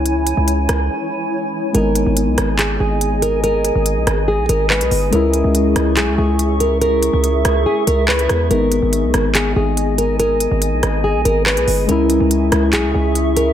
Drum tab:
HH |x-x-x-x---------|x-x-x-x-x---x-x-|x-x-x-x---x--xo-|x-x-x-x-x---x-x-|
CP |----------------|--------x-------|------------x---|--------x-------|
SD |------r---------|------r---------|------r---------|------r---------|

HH |x-x-x-x---x--xx-|x-x-x-x-x---x-x-|x-x-x-x---x--xo-|x-x-x-x-x---x-x-|
CP |------------x---|--------x-------|------------x---|--------x-------|
SD |------r-------r-|------r---------|------r---------|------r---------|